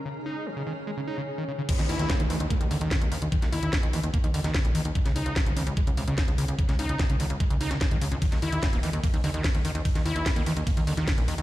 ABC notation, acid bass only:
X:1
M:4/4
L:1/16
Q:1/4=147
K:none
V:1 name="Acid bass" clef=bass
_D, z _E2 D, D, _E, z _A, D, E D, z E, D, D, | _E, z _F2 E, E, _F, z _B, E, D, E, z2 E, z | _E, z _F2 E, E, _F, z _B, E, D, E, z2 E, z | _D, z _E2 D, D, _E, z _A, D, C, D, z2 D, z |
_D, z _E2 D, D, _E, z _A, D, E D, z E, D, D, | _E, z _F2 E, _B, _F, z B, E, D, E, z2 E, z | _E, z _F2 E, _B, _F, z B, E, D, E, z2 E, z |]